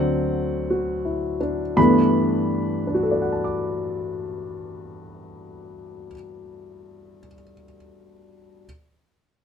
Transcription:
grand piano
Already playing: D2 D3 F#3 C4 D5 F#5
0.70 F#4
1.05 E4
1.41 D4
1.77 G2 E3 A3 B3 B5
2.87 D4
2.95 F#4
3.03 A4
3.11 D5
3.22 F#5
3.32 A5
3.44 D6

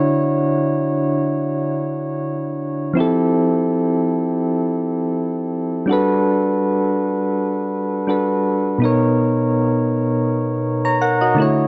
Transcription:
synth keys
Already playing: D3 D4 E4 F#4 C#5
2.94 F3 C4 E4
2.99 G4 A4
5.86 G3 D4 F#4
5.91 A4 B4
8.07 G3 D4 F#4 A4 B4
8.78 B2 B3 D#4
8.84 A#4 C#5
10.85 C#5 A#5
11.01 A#4 F#5
11.21 F#4 D#5
11.35 D3 A3 E4
11.40 F#4 C#5

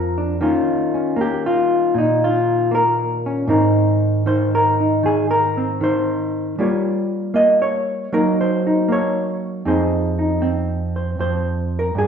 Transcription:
hollow-body jazz guitar
Already playing: F2 F3 C4 A#4
0.18 D4
0.41 D#3 A#3 C#4 F4
0.94 C#4
1.16 A#3
1.21 G4
1.46 F4
1.95 A#2 D#4
2.24 F4
2.71 A#3 A#4
3.26 C#4
3.47 G#2 D#3 C4 D#4 A#4
4.26 D#3 C5
4.55 A#4
4.80 D#4
5.03 D#3 G#4
5.31 A#4
5.57 C4
5.81 D#3 C5
6.59 G3 A#3 F4 G4 C#5
7.34 A#3 D#5
7.62 C#5
8.13 F#3 A#3 D#4 A#4
8.41 C5
8.67 D#4
8.88 A#3 C#5
9.65 F2 C4 D#4 G#4 C5
10.19 D#4
10.42 C4
10.96 C5
11.19 F2 C5
11.79 A#4
11.95 G2 G#4

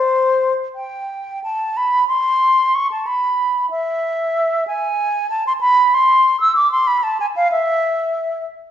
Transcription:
flute
Already playing: C5
0.75 G5
1.44 A5
1.77 B5
2.08 C6
2.75 C#6
2.92 A5
3.07 B5
3.70 E5
4.67 G#5
5.30 A5
5.47 C6
5.61 B5
5.94 C6
6.40 E6
6.56 D6
6.72 C6
6.87 B5
7.03 A5
7.20 G#5
7.36 F5
7.52 E5

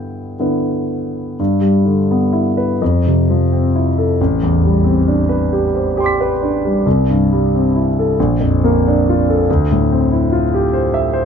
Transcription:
grand piano
Already playing: G2 D3 B3 E4 B4 G5
0.39 D3 B3 E4 B4
1.39 G2
1.61 G3
1.85 D3
2.11 B3
2.33 E4
2.57 B4
2.82 F2
3.07 C3
3.30 F3
3.53 C4
3.76 E4
3.98 A4
4.21 A1
4.43 E2
4.65 G3
4.84 C4
5.08 D4
5.29 B4
5.53 G4
5.74 C5
5.97 G4 G5 C6
6.04 D6 B6
6.20 B4
6.42 D4
6.65 G3
6.86 C2
7.10 G2
7.32 G3
7.55 C4
7.76 E4
7.99 A4
8.20 A#1
8.40 F2
8.64 A#3
8.88 D4
9.09 F4
9.30 A4
9.51 D2
9.72 A2
9.91 C4
10.12 E4
10.32 F4
10.54 G4
10.73 C5
10.94 E5
11.13 C5

